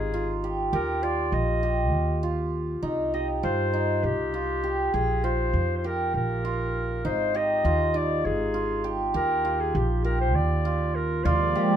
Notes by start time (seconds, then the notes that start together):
Already playing: G#1 D#4 F4 G4 G#4
0.14 F4
0.44 G4
0.73 D#2 G4 A#4
1.03 F4 D5
1.32 A#1 D#5
1.63 G4
1.91 D#2
2.23 F4
2.83 C2 D#4
3.14 G4 D#5
3.43 G2 F4 C5
3.73 D#4
4.03 C2 G4
4.34 F4
4.64 G4
4.94 A#1 G#4 G5
5.24 F4 C5
5.53 F2
5.77 C5
5.84 G4 A#4
6.14 A#1 A#4
6.45 F4
7.05 G#1 D#4 C5
7.34 G4 D#5
7.64 D#2 F4
7.94 D#4 D5
8.25 G#1 G#4
8.54 F4
8.84 G4
9.14 D#2 G4 A#4
9.45 F4
9.61 G#4
9.75 A#1 G4
10.04 G4 A#4
10.20 C5
10.35 D#2 D5
10.65 F4
10.95 A#4
11.25 D#2 F3 G#3 A#3 F4 D5, frame drum
11.55 G4 F5